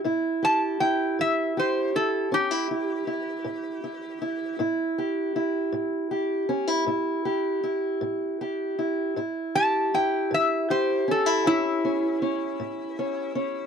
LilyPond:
<<
  \new Staff \with { instrumentName = "Resonator guitar played with a steel bar" } { \time 12/8 \key a \mixolydian \tempo 4. = 53 r8 a''8 g''8 e''8 c''8 a'8 g'2. | r1. | r8 a''8 g''8 e''8 c''8 a'8 e'2. | }
  \new Staff \with { instrumentName = "Steel-string acoustic guitar" } { \time 12/8 \key a \mixolydian << { e'8 g'8 e'4 g'8 e'8 cis'16 e'16 e'8 e'4 e'8 e'8 | e'8 g'8 e'4 g'8 cis'16 e'16 e'8 g'8 e'4 g'8 e'8 | e'8 g'8 e'4 g'8 cis'16 e'16 cis'8 cis'8 cis'4 cis'8 cis'8 | } \\ { a,4 r8 a,4 r8 a,4 r8 a,4 r8 | a,4 r8 a,4 r8 a,4 r8 a,4 r8 | a,4 r8 a,4 r8 a,4 r8 a,4 r8 | } >> }
>>